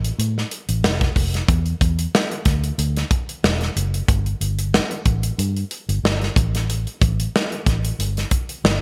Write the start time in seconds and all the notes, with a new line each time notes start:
Already playing: A1
0.05 closed hi-hat
0.19 A2, closed hi-hat
0.38 snare
0.51 closed hi-hat
0.69 A1, closed hi-hat
0.84 F1, snare
1.01 kick, snare, closed hi-hat
1.16 F1, kick, open hi-hat
1.34 snare, closed hi-hat
1.48 E2, kick, closed hi-hat
1.66 closed hi-hat
1.81 E2, kick, closed hi-hat
1.99 closed hi-hat
2.15 snare
2.31 closed hi-hat
2.45 D2, kick, snare, closed hi-hat
2.64 closed hi-hat
2.78 D2, closed hi-hat
2.97 snare, closed hi-hat
3.11 kick, closed hi-hat
3.29 closed hi-hat
3.44 E1, snare
3.61 snare, closed hi-hat
3.76 F#1, closed hi-hat
3.94 closed hi-hat
4.08 G1, kick, closed hi-hat
4.26 closed hi-hat
4.41 G1, closed hi-hat
4.59 closed hi-hat
4.74 snare
4.91 closed hi-hat
5.06 A1, kick, closed hi-hat
5.23 closed hi-hat
5.38 G2, closed hi-hat
5.57 closed hi-hat
5.71 closed hi-hat
5.89 G1, closed hi-hat
6.03 G1, snare
6.22 snare, closed hi-hat
6.36 A1, kick, closed hi-hat
6.55 snare, closed hi-hat
6.70 closed hi-hat
6.87 closed hi-hat
7.02 A1, kick, closed hi-hat
7.20 closed hi-hat
7.36 snare
7.52 closed hi-hat
7.66 A1, kick, snare, closed hi-hat
7.85 closed hi-hat
7.99 G1, closed hi-hat
8.17 snare, closed hi-hat
8.31 kick, closed hi-hat
8.49 closed hi-hat
8.64 G1, snare